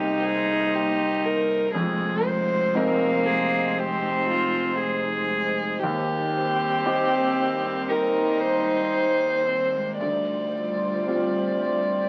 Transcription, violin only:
0.00 0.25 G4 soft
0.24 0.76 G#4 medium
0.74 1.26 G4 medium
1.25 1.74 A#4 medium
1.74 2.27 G#4 medium
2.26 2.78 C5 medium
2.76 3.28 A#4 medium
3.26 3.80 G#4 medium
3.78 4.29 G4 medium
4.30 4.79 F4 medium
4.79 5.80 G#4 medium
5.84 7.91 G4 medium
7.89 8.42 A#4 medium
8.40 9.99 C5 medium
10.00 12.09 D5 soft

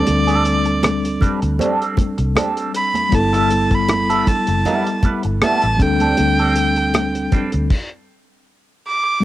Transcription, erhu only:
0.00 1.23 D5 medium
2.77 3.16 B5 medium
3.15 3.76 A5 medium
3.74 4.30 B5 medium
4.28 5.04 A5 medium
5.43 5.84 A5 medium
5.82 7.34 G5 loud
8.87 9.24 D6 medium

